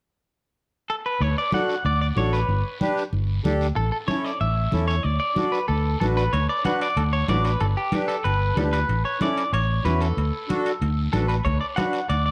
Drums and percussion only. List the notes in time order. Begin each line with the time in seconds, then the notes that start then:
1.20 high conga, long guiro
1.52 high conga, short guiro
1.69 short guiro
1.85 high conga, long guiro
2.17 high conga, short guiro
2.33 short guiro
2.49 high conga, long guiro
2.81 high conga, short guiro
2.98 short guiro
3.13 high conga, long guiro
3.45 high conga, short guiro
3.61 short guiro
3.77 high conga, long guiro
4.08 high conga, short guiro
4.26 short guiro
4.41 high conga, long guiro
4.72 high conga, short guiro
4.89 short guiro
5.04 high conga, long guiro
5.36 high conga, short guiro
5.53 short guiro
5.68 high conga, long guiro
6.01 high conga, short guiro
6.17 short guiro
6.33 high conga, high timbale, long guiro
6.65 high conga, high timbale, short guiro
6.81 high timbale, short guiro
6.97 high conga, high timbale, long guiro
7.28 high conga, high timbale, low timbale, short guiro
7.45 high timbale, short guiro
7.60 high conga, high timbale, long guiro
7.92 high conga, high timbale, short guiro
8.09 high timbale, short guiro
8.25 high conga, high timbale, long guiro
8.57 high conga, high timbale, low timbale, short guiro
8.73 high timbale, short guiro
8.89 high conga, high timbale, long guiro
9.21 high conga, high timbale, short guiro
9.37 high timbale, short guiro
9.53 high conga, high timbale, long guiro
9.85 high conga, high timbale, short guiro
10.01 high timbale, short guiro
10.17 high conga, high timbale, long guiro
10.49 high conga, high timbale, short guiro
10.66 high timbale, short guiro
10.81 high conga, high timbale, long guiro
11.13 high conga, high timbale, short guiro
11.29 high timbale, short guiro
11.46 bombo low, high conga, high timbale, long guiro
11.77 bombo rim, high conga, high timbale, short guiro
11.93 high timbale, short guiro
12.10 high conga, high timbale, long guiro